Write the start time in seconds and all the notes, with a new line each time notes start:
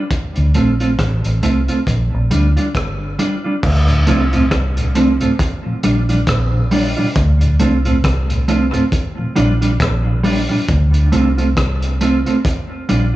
0.11 kick, closed hi-hat
0.36 D2, closed hi-hat
0.54 A#1 A3 C4 F4, closed hi-hat
0.80 A3 C4 F4, closed hi-hat
0.99 A1, kick, cross-stick, closed hi-hat
1.24 A1, closed hi-hat
1.43 C2 A3 C4 F4, closed hi-hat
1.68 A3 C4 F4, closed hi-hat
1.87 A#1, kick, closed hi-hat
2.14 A#1
2.31 D2 G3 D4 F4, closed hi-hat
2.57 G3 D4 F4, closed hi-hat
2.75 G1, kick, cross-stick, closed hi-hat
3.19 G3 D4 F4, closed hi-hat
3.44 G3 D4 F4
3.63 D2, kick, crash
3.88 D2 A2, closed hi-hat
4.07 C2 F3 A3 C4 D4 F4, closed hi-hat
4.33 D2 A2 A3 C4 F4, closed hi-hat
4.51 C2, kick, cross-stick, closed hi-hat
4.77 D2 A2, closed hi-hat
4.95 F3 A3 C4 D4 F4, closed hi-hat
5.20 D2 A2 A3 C4 F4, closed hi-hat
5.39 kick, closed hi-hat
5.65 A#2 F3
5.83 A#1 G3 A#3 D4 F4, closed hi-hat
6.09 A#2 F3 G3 D4 F4, closed hi-hat
6.27 A#1, kick, cross-stick, closed hi-hat
6.54 A#2 F3
6.71 G3 A#3 D4 F4, open hi-hat
6.97 A#2 F3 G3 D4 F4
7.16 D2, kick, closed hi-hat
7.41 D2 A2, closed hi-hat
7.59 C2 F3 A3 C4 D4 F4, closed hi-hat
7.85 D2 A2 A3 C4 F4, closed hi-hat
8.04 C2, kick, cross-stick, closed hi-hat
8.30 D2 A2, closed hi-hat
8.48 F3 A3 C4 D4 F4, closed hi-hat
8.73 D2 A2 A3 C4 F4, closed hi-hat
8.92 kick, closed hi-hat
9.18 A#2 F3
9.36 A#1 G3 A#3 D4 F4, closed hi-hat
9.61 A#2 F3 G3 D4 F4, closed hi-hat
9.80 A#1, kick, cross-stick, closed hi-hat
10.06 A#2 F3
10.23 G3 A#3 D4 F4, open hi-hat
10.49 A#2 F3 G3 D4 F4
10.68 D2, kick, closed hi-hat
10.94 closed hi-hat
11.12 C2 A3 C4 F4, closed hi-hat
11.38 A3 C4 F4, closed hi-hat
11.57 C2, kick, cross-stick, closed hi-hat
11.82 closed hi-hat
12.01 A3 C4 F4, closed hi-hat
12.26 A3 C4 F4, closed hi-hat
12.45 kick, closed hi-hat
12.89 A#1 G3 D4 F4, closed hi-hat